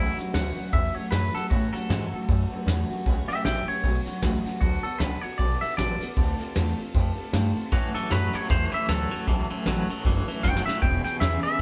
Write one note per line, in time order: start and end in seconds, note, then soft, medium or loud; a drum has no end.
0.00 0.17 C#2 medium
0.00 0.17 A2 medium
0.00 0.18 E3 medium
0.00 0.18 F#3 medium
0.00 0.18 A3 medium
0.00 0.18 C#4 medium
0.00 0.17 E4 medium
0.00 0.16 F#4 loud
0.17 0.33 F#3 soft
0.17 0.34 A3 soft
0.17 0.34 C#4 medium
0.17 0.34 F#4 medium
0.17 muted upright bass stroke medium
0.17 snare soft
0.17 ride medium
0.33 0.56 D2 loud
0.33 0.57 A2 medium
0.33 0.57 E3 medium
0.33 0.57 F#3 medium
0.33 0.57 A3 medium
0.33 0.56 C#4 medium
0.33 0.55 F#4 loud
0.33 0.72 F#5 medium
0.33 snare loud
0.33 ride medium
0.56 0.71 F#3 soft
0.56 0.72 A3 medium
0.56 0.73 C#4 medium
0.56 0.73 F#4 medium
0.56 muted upright bass stroke medium
0.56 ride medium
0.72 0.95 E2 medium
0.72 0.95 F#3 medium
0.72 0.95 A3 medium
0.72 0.94 C#4 medium
0.72 0.93 F#4 medium
0.72 0.95 E5 medium
0.72 kick loud
0.72 ride medium
0.94 1.11 F#3 soft
0.94 1.12 A3 medium
0.94 1.12 C#4 medium
0.94 1.11 F#4 medium
0.94 1.10 C#5 medium
0.94 muted upright bass stroke medium
0.94 ride medium
1.11 1.34 F#2 loud
1.11 1.35 A2 medium
1.11 1.35 E3 medium
1.11 1.35 F#3 medium
1.11 1.35 A3 medium
1.11 1.34 C#4 medium
1.11 1.33 F#4 medium
1.11 1.33 B4 medium
1.11 snare loud
1.11 ride medium
1.34 1.51 F#3 soft
1.34 1.51 A3 soft
1.34 1.51 C#4 medium
1.34 1.51 F#4 medium
1.34 1.50 A4 medium
1.34 muted upright bass stroke medium
1.34 snare soft
1.34 ride medium
1.50 1.73 A2 medium
1.50 1.74 A2 medium
1.50 1.74 E3 medium
1.50 1.74 F#3 medium
1.50 1.74 A3 medium
1.50 1.73 C#4 medium
1.50 1.73 F#4 medium
1.50 1.72 F#4 medium
1.50 kick loud
1.50 ride medium
1.73 1.89 F#3 soft
1.73 1.90 A3 soft
1.73 1.90 C#4 medium
1.73 1.90 F#4 medium
1.73 2.86 A4 loud
1.73 muted upright bass stroke medium
1.73 snare soft
1.73 ride medium
1.89 2.12 G#2 loud
1.89 2.12 A2 medium
1.89 2.12 E3 medium
1.89 2.13 F#3 medium
1.89 2.13 A3 medium
1.89 2.12 C#4 medium
1.89 2.10 F#4 loud
1.89 snare loud
1.89 ride medium
2.12 2.27 F#3 medium
2.12 2.28 A3 soft
2.12 2.29 C#4 soft
2.12 2.28 F#4 medium
2.12 muted upright bass stroke medium
2.12 ride medium
2.28 2.50 F#2 loud
2.28 2.51 F#3 medium
2.28 2.52 A3 medium
2.28 2.51 C#4 medium
2.28 2.49 F#4 medium
2.28 kick loud
2.28 snare soft
2.28 ride medium
2.51 2.67 F#3 medium
2.51 2.67 A3 medium
2.51 2.67 C#4 medium
2.51 2.67 F#4 medium
2.51 muted upright bass stroke medium
2.51 ride medium
2.66 2.89 E2 loud
2.66 2.90 A2 medium
2.66 2.90 E3 medium
2.66 2.91 F#3 medium
2.66 2.91 A3 loud
2.66 2.90 C#4 loud
2.66 2.89 F#4 medium
2.66 snare loud
2.66 ride loud
2.89 3.05 F#3 medium
2.89 3.06 A3 medium
2.89 3.06 C#4 medium
2.89 3.06 F#4 medium
2.89 muted upright bass stroke medium
2.89 ride medium
3.06 3.28 C#2 medium
3.06 3.29 A2 medium
3.06 3.29 E3 loud
3.06 3.29 F#3 loud
3.06 3.28 A3 loud
3.06 3.27 C#4 loud
3.06 3.26 F#4 loud
3.06 kick loud
3.06 ride medium
3.28 3.44 F#3 soft
3.28 3.44 A3 medium
3.28 3.45 C#4 medium
3.28 3.45 F#4 medium
3.28 3.45 G4 medium
3.28 3.43 E5 loud
3.28 muted upright bass stroke medium
3.28 snare soft
3.28 ride medium
3.44 3.66 A1 medium
3.44 3.67 A2 medium
3.44 3.68 E3 medium
3.44 3.68 F#3 medium
3.44 3.67 A3 medium
3.44 3.66 C#4 medium
3.44 3.65 F#4 loud
3.44 3.66 E5 medium
3.44 3.67 G5 medium
3.44 snare loud
3.44 ride medium
3.67 3.82 F#3 soft
3.67 3.83 A3 soft
3.67 3.84 C#4 medium
3.67 3.83 F#4 soft
3.67 4.43 C#5 loud
3.67 muted upright bass stroke medium
3.67 ride medium
3.83 4.05 B1 medium
3.83 4.07 F#3 medium
3.83 4.07 A3 medium
3.83 4.06 C#4 medium
3.83 4.05 F#4 medium
3.83 kick loud
3.83 ride medium
4.06 4.21 F#3 soft
4.06 4.22 A3 soft
4.06 4.22 C#4 soft
4.06 4.22 F#4 medium
4.06 snare soft
4.06 ride medium
4.22 4.44 C#2 loud
4.22 4.45 A2 medium
4.22 4.45 E3 medium
4.22 4.45 F#3 medium
4.22 4.45 A3 medium
4.22 4.44 C#4 loud
4.22 4.43 F#4 loud
4.22 kick medium
4.22 snare loud
4.22 ride medium
4.44 4.60 F#3 medium
4.44 4.61 A3 medium
4.44 4.62 C#4 medium
4.44 4.61 F#4 medium
4.44 muted upright bass stroke medium
4.44 snare soft
4.44 ride medium
4.61 4.83 D2 medium
4.61 4.84 D3 medium
4.61 4.84 F#3 medium
4.61 4.84 B3 medium
4.61 4.83 F#4 medium
4.61 4.82 A4 medium
4.61 kick loud
4.61 ride medium
4.83 5.00 B3 soft
4.83 5.00 F#4 soft
4.83 5.00 A4 medium
4.83 4.98 A4 medium
4.83 muted upright bass stroke medium
4.83 ride medium
4.98 5.22 C#2 medium
4.98 5.23 D3 medium
4.98 5.23 F#3 medium
4.98 5.24 B3 medium
4.98 5.23 F#4 loud
4.98 5.21 A4 medium
4.98 5.21 B4 medium
4.98 snare loud
4.98 ride medium
5.21 5.39 F#4 medium
5.21 5.39 A4 medium
5.21 5.38 C#5 medium
5.21 muted upright bass stroke medium
5.21 ride medium
5.26 5.38 B3 soft
5.38 5.61 B1 medium
5.38 5.61 F#3 medium
5.38 5.62 B3 medium
5.38 5.61 F#4 medium
5.38 5.59 A4 medium
5.38 5.61 D5 medium
5.38 kick loud
5.38 ride medium
5.61 5.77 B3 medium
5.61 5.78 F#4 soft
5.61 5.77 A4 medium
5.61 5.77 E5 loud
5.61 muted upright bass stroke medium
5.61 snare soft
5.61 ride medium
5.77 6.00 A1 loud
5.77 6.00 D3 medium
5.77 6.01 F#3 medium
5.77 6.01 B3 medium
5.77 6.01 F#4 medium
5.77 5.99 A4 medium
5.77 6.91 D5 loud
5.77 snare loud
5.77 ride loud
6.00 6.17 B3 soft
6.00 6.17 F#4 soft
6.00 6.17 A4 medium
6.00 snare soft
6.00 ride medium
6.16 6.39 D2 medium
6.16 6.39 D3 medium
6.16 6.40 A3 medium
6.16 6.40 C4 medium
6.16 6.39 F4 medium
6.16 6.37 A4 medium
6.16 kick loud
6.16 ride medium
6.38 6.55 C4 soft
6.38 6.55 F4 medium
6.38 6.55 A4 medium
6.38 muted upright bass stroke medium
6.38 snare soft
6.38 ride medium
6.55 6.78 E2 medium
6.55 6.78 D3 medium
6.55 6.78 A3 medium
6.55 6.79 C4 medium
6.55 6.78 F4 loud
6.55 6.76 A4 loud
6.55 snare loud
6.55 ride medium
6.78 6.93 C4 medium
6.78 6.95 F4 medium
6.78 6.94 A4 medium
6.78 muted upright bass stroke medium
6.78 ride medium
6.93 7.17 F2 medium
6.93 7.17 A3 medium
6.93 7.17 C4 medium
6.93 7.17 F4 medium
6.93 7.15 A4 medium
6.93 kick loud
6.93 ride medium
7.16 7.33 C4 medium
7.16 7.34 F4 medium
7.16 7.33 A4 medium
7.16 muted upright bass stroke medium
7.16 ride medium
7.33 7.55 G2 loud
7.33 7.56 D3 medium
7.33 7.56 A3 loud
7.33 7.57 C4 medium
7.33 7.56 F4 medium
7.33 7.54 A4 loud
7.33 snare loud
7.33 ride medium
7.55 7.73 C4 soft
7.55 7.73 F4 medium
7.55 7.72 A4 medium
7.55 muted upright bass stroke medium
7.55 ride medium
7.72 7.95 A2 medium
7.72 7.93 A2 medium
7.72 7.94 A2 medium
7.72 7.95 E3 medium
7.72 7.93 E3 loud
7.72 7.95 F#3 medium
7.72 7.96 A3 medium
7.72 7.95 C#4 loud
7.72 7.94 F#4 loud
7.72 7.94 A4 medium
7.72 kick loud
7.72 ride medium
7.95 8.09 A2 medium
7.95 8.10 E3 medium
7.95 8.11 F#3 soft
7.95 8.11 A3 soft
7.95 8.11 C#4 soft
7.95 8.10 A4 medium
7.95 8.11 A4 medium
7.95 muted upright bass stroke medium
7.95 ride medium
8.11 8.33 F#2 loud
8.11 8.31 A2 medium
8.11 8.34 A2 medium
8.11 8.34 E3 medium
8.11 8.31 F#3 loud
8.11 8.34 F#3 medium
8.11 8.34 A3 medium
8.11 8.33 C#4 medium
8.11 8.32 A4 medium
8.11 8.35 B4 medium
8.11 snare loud
8.11 ride medium
8.33 8.48 A2 medium
8.33 8.48 F#3 medium
8.33 8.48 F#3 soft
8.33 8.50 A3 medium
8.33 8.50 C#4 medium
8.33 8.50 A4 medium
8.33 8.50 C#5 loud
8.33 muted upright bass stroke medium
8.33 ride medium
8.49 8.72 E2 loud
8.49 8.70 A2 medium
8.49 8.70 E3 loud
8.49 8.72 F#3 medium
8.49 8.73 A3 medium
8.49 8.73 C#4 medium
8.49 8.71 A4 medium
8.49 8.72 C5 loud
8.49 kick loud
8.49 snare soft
8.49 ride medium
8.72 8.87 A2 medium
8.72 8.87 E3 medium
8.72 8.88 F#3 soft
8.72 8.88 A3 medium
8.72 8.88 C#4 medium
8.72 8.89 A4 medium
8.72 8.89 E5 loud
8.72 muted upright bass stroke medium
8.72 ride medium
8.88 9.10 D2 loud
8.88 9.11 A2 medium
8.88 9.09 A2 medium
8.88 9.11 E3 medium
8.88 9.09 F#3 medium
8.88 9.12 F#3 medium
8.88 9.11 A3 medium
8.88 9.10 C#4 medium
8.88 10.01 A4 loud
8.88 9.08 A4 medium
8.88 snare loud
8.88 ride medium
9.10 9.25 A2 medium
9.10 9.26 F#3 medium
9.10 9.26 F#3 soft
9.10 9.27 A3 soft
9.10 9.27 C#4 soft
9.10 9.26 A4 medium
9.10 muted upright bass stroke medium
9.10 ride medium
9.26 9.49 C#2 medium
9.26 9.49 A2 medium
9.26 9.48 A2 medium
9.26 9.50 E3 medium
9.26 9.48 E3 medium
9.26 9.50 F#3 medium
9.26 9.50 A3 medium
9.26 9.49 C#4 loud
9.26 9.48 A4 medium
9.26 kick loud
9.26 ride medium
9.49 9.65 A2 medium
9.49 9.65 E3 medium
9.49 9.65 F#3 medium
9.49 9.66 A3 medium
9.49 9.66 C#4 medium
9.49 9.66 A4 medium
9.49 ride medium
9.66 9.88 A1 loud
9.66 9.88 A2 medium
9.66 9.87 A2 medium
9.66 9.89 E3 loud
9.66 9.89 F#3 loud
9.66 9.87 F#3 loud
9.66 9.89 A3 medium
9.66 9.88 C#4 loud
9.66 9.87 A4 loud
9.66 snare loud
9.66 ride medium
9.88 10.04 A2 medium
9.88 10.04 F#3 medium
9.88 10.03 F#3 medium
9.88 10.04 A3 medium
9.88 10.05 C#4 medium
9.88 10.04 A4 medium
9.88 muted upright bass stroke medium
9.88 ride medium
10.04 10.27 F#1 medium
10.04 10.26 A2 medium
10.04 10.26 E3 medium
10.04 10.27 F#3 medium
10.04 10.28 A3 medium
10.04 10.27 C#4 medium
10.04 10.26 A4 medium
10.04 kick loud
10.04 ride medium
10.27 10.42 A2 medium
10.27 10.42 E3 medium
10.27 10.44 F#3 medium
10.27 10.44 A3 medium
10.27 10.44 C#4 medium
10.27 10.44 A4 medium
10.27 muted upright bass stroke medium
10.27 snare soft
10.27 ride medium
10.43 10.65 F1 loud
10.43 10.64 A2 medium
10.43 10.66 A2 medium
10.43 10.67 E3 medium
10.43 10.64 F#3 medium
10.43 10.67 F#3 medium
10.43 10.67 A3 medium
10.43 10.66 C#4 medium
10.43 10.65 A4 medium
10.43 10.65 G5 loud
10.43 kick medium
10.43 snare medium
10.57 snare medium
10.66 10.81 F#3 medium
10.66 10.81 F#3 soft
10.66 10.82 A3 medium
10.66 10.82 C#4 medium
10.66 10.82 A4 medium
10.66 10.81 E5 loud
10.66 muted upright bass stroke medium
10.66 snare loud
10.82 11.04 E1 medium
10.82 11.03 E2 medium
10.82 11.03 B2 loud
10.82 11.05 E3 medium
10.82 11.05 G#3 medium
10.82 11.05 B3 medium
10.82 11.04 C#4 medium
10.82 11.03 G#4 medium
10.82 11.03 G5 loud
10.82 kick loud
10.82 ride medium
11.04 11.19 E2 medium
11.04 11.20 B2 medium
11.04 11.20 B3 soft
11.04 11.21 C#4 soft
11.04 11.20 G#4 medium
11.04 11.20 G5 medium
11.04 muted upright bass stroke medium
11.04 snare soft
11.04 ride medium
11.20 11.42 E2 loud
11.20 11.41 E2 medium
11.20 11.42 C#3 medium
11.20 11.43 E3 medium
11.20 11.44 G#3 medium
11.20 11.44 B3 medium
11.20 11.43 C#4 medium
11.20 11.42 G#4 medium
11.20 11.42 E5 medium
11.20 snare loud
11.20 ride medium
11.43 11.58 E2 medium
11.43 11.58 C#3 medium
11.43 11.59 B3 soft
11.43 11.60 C#4 soft
11.43 11.59 G#4 medium
11.43 11.62 E5 loud
11.43 muted upright bass stroke medium
11.43 ride medium